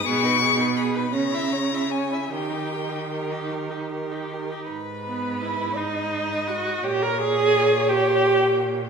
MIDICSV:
0, 0, Header, 1, 5, 480
1, 0, Start_track
1, 0, Key_signature, 5, "minor"
1, 0, Tempo, 706714
1, 35, Time_signature, 6, 3, 24, 8
1, 515, Tempo, 756620
1, 995, Tempo, 795756
1, 2915, Tempo, 705053
1, 5772, End_track
2, 0, Start_track
2, 0, Title_t, "Violin"
2, 0, Program_c, 0, 40
2, 38, Note_on_c, 0, 85, 127
2, 520, Note_on_c, 0, 83, 87
2, 529, Note_off_c, 0, 85, 0
2, 752, Note_on_c, 0, 82, 95
2, 762, Note_off_c, 0, 83, 0
2, 1235, Note_on_c, 0, 80, 79
2, 1244, Note_off_c, 0, 82, 0
2, 1477, Note_off_c, 0, 80, 0
2, 1493, Note_on_c, 0, 79, 84
2, 2198, Note_off_c, 0, 79, 0
2, 2926, Note_on_c, 0, 83, 58
2, 4344, Note_off_c, 0, 83, 0
2, 4377, Note_on_c, 0, 82, 70
2, 5089, Note_on_c, 0, 79, 67
2, 5099, Note_off_c, 0, 82, 0
2, 5772, Note_off_c, 0, 79, 0
2, 5772, End_track
3, 0, Start_track
3, 0, Title_t, "Violin"
3, 0, Program_c, 1, 40
3, 40, Note_on_c, 1, 68, 67
3, 168, Note_on_c, 1, 71, 59
3, 178, Note_off_c, 1, 68, 0
3, 280, Note_on_c, 1, 68, 60
3, 290, Note_off_c, 1, 71, 0
3, 404, Note_on_c, 1, 71, 53
3, 415, Note_off_c, 1, 68, 0
3, 520, Note_off_c, 1, 71, 0
3, 534, Note_on_c, 1, 68, 58
3, 638, Note_on_c, 1, 71, 54
3, 647, Note_off_c, 1, 68, 0
3, 753, Note_off_c, 1, 71, 0
3, 762, Note_on_c, 1, 73, 60
3, 887, Note_on_c, 1, 76, 57
3, 896, Note_off_c, 1, 73, 0
3, 1003, Note_on_c, 1, 73, 51
3, 1012, Note_off_c, 1, 76, 0
3, 1135, Note_on_c, 1, 76, 48
3, 1144, Note_off_c, 1, 73, 0
3, 1243, Note_off_c, 1, 76, 0
3, 1246, Note_on_c, 1, 73, 56
3, 1368, Note_on_c, 1, 76, 46
3, 1377, Note_off_c, 1, 73, 0
3, 1482, Note_off_c, 1, 76, 0
3, 1494, Note_on_c, 1, 70, 51
3, 1609, Note_on_c, 1, 67, 46
3, 1618, Note_off_c, 1, 70, 0
3, 1728, Note_on_c, 1, 70, 44
3, 1737, Note_off_c, 1, 67, 0
3, 1841, Note_on_c, 1, 67, 41
3, 1850, Note_off_c, 1, 70, 0
3, 1962, Note_off_c, 1, 67, 0
3, 1969, Note_on_c, 1, 70, 45
3, 2085, Note_on_c, 1, 67, 45
3, 2094, Note_off_c, 1, 70, 0
3, 2210, Note_on_c, 1, 70, 48
3, 2219, Note_off_c, 1, 67, 0
3, 2322, Note_on_c, 1, 67, 43
3, 2331, Note_off_c, 1, 70, 0
3, 2444, Note_off_c, 1, 67, 0
3, 2447, Note_on_c, 1, 70, 44
3, 2563, Note_on_c, 1, 67, 44
3, 2572, Note_off_c, 1, 70, 0
3, 2695, Note_on_c, 1, 70, 47
3, 2704, Note_off_c, 1, 67, 0
3, 2799, Note_on_c, 1, 67, 40
3, 2808, Note_off_c, 1, 70, 0
3, 2910, Note_off_c, 1, 67, 0
3, 2914, Note_on_c, 1, 71, 44
3, 3643, Note_on_c, 1, 75, 52
3, 3653, Note_off_c, 1, 71, 0
3, 4369, Note_on_c, 1, 73, 59
3, 4379, Note_off_c, 1, 75, 0
3, 5772, Note_off_c, 1, 73, 0
3, 5772, End_track
4, 0, Start_track
4, 0, Title_t, "Viola"
4, 0, Program_c, 2, 41
4, 34, Note_on_c, 2, 59, 79
4, 158, Note_on_c, 2, 63, 69
4, 168, Note_off_c, 2, 59, 0
4, 278, Note_on_c, 2, 59, 70
4, 288, Note_off_c, 2, 63, 0
4, 389, Note_on_c, 2, 63, 58
4, 400, Note_off_c, 2, 59, 0
4, 507, Note_off_c, 2, 63, 0
4, 511, Note_on_c, 2, 59, 56
4, 631, Note_on_c, 2, 63, 54
4, 641, Note_off_c, 2, 59, 0
4, 743, Note_off_c, 2, 63, 0
4, 747, Note_on_c, 2, 61, 64
4, 869, Note_on_c, 2, 64, 54
4, 879, Note_off_c, 2, 61, 0
4, 990, Note_on_c, 2, 61, 49
4, 999, Note_off_c, 2, 64, 0
4, 1111, Note_on_c, 2, 64, 43
4, 1120, Note_off_c, 2, 61, 0
4, 1227, Note_off_c, 2, 64, 0
4, 1230, Note_on_c, 2, 61, 50
4, 1351, Note_on_c, 2, 64, 43
4, 1360, Note_off_c, 2, 61, 0
4, 1465, Note_off_c, 2, 64, 0
4, 1469, Note_on_c, 2, 67, 53
4, 1587, Note_on_c, 2, 63, 47
4, 1596, Note_off_c, 2, 67, 0
4, 1710, Note_on_c, 2, 67, 51
4, 1719, Note_off_c, 2, 63, 0
4, 1827, Note_on_c, 2, 63, 43
4, 1836, Note_off_c, 2, 67, 0
4, 1955, Note_off_c, 2, 63, 0
4, 1961, Note_on_c, 2, 67, 41
4, 2076, Note_on_c, 2, 63, 39
4, 2085, Note_off_c, 2, 67, 0
4, 2202, Note_on_c, 2, 67, 44
4, 2211, Note_off_c, 2, 63, 0
4, 2314, Note_on_c, 2, 63, 45
4, 2323, Note_off_c, 2, 67, 0
4, 2435, Note_off_c, 2, 63, 0
4, 2438, Note_on_c, 2, 67, 40
4, 2562, Note_on_c, 2, 63, 38
4, 2571, Note_off_c, 2, 67, 0
4, 2683, Note_on_c, 2, 67, 40
4, 2692, Note_off_c, 2, 63, 0
4, 2806, Note_on_c, 2, 63, 43
4, 2815, Note_off_c, 2, 67, 0
4, 2917, Note_off_c, 2, 63, 0
4, 3157, Note_on_c, 2, 59, 70
4, 3401, Note_on_c, 2, 64, 72
4, 3411, Note_off_c, 2, 59, 0
4, 3643, Note_on_c, 2, 63, 66
4, 3654, Note_off_c, 2, 64, 0
4, 4125, Note_on_c, 2, 66, 73
4, 4135, Note_off_c, 2, 63, 0
4, 4370, Note_on_c, 2, 67, 81
4, 4380, Note_off_c, 2, 66, 0
4, 4502, Note_on_c, 2, 70, 91
4, 4512, Note_off_c, 2, 67, 0
4, 4605, Note_on_c, 2, 68, 108
4, 4615, Note_off_c, 2, 70, 0
4, 5090, Note_on_c, 2, 67, 96
4, 5101, Note_off_c, 2, 68, 0
4, 5772, Note_off_c, 2, 67, 0
4, 5772, End_track
5, 0, Start_track
5, 0, Title_t, "Cello"
5, 0, Program_c, 3, 42
5, 48, Note_on_c, 3, 47, 89
5, 742, Note_off_c, 3, 47, 0
5, 755, Note_on_c, 3, 49, 68
5, 1465, Note_off_c, 3, 49, 0
5, 1483, Note_on_c, 3, 51, 63
5, 2769, Note_off_c, 3, 51, 0
5, 2924, Note_on_c, 3, 44, 59
5, 4343, Note_off_c, 3, 44, 0
5, 4375, Note_on_c, 3, 46, 71
5, 5772, Note_off_c, 3, 46, 0
5, 5772, End_track
0, 0, End_of_file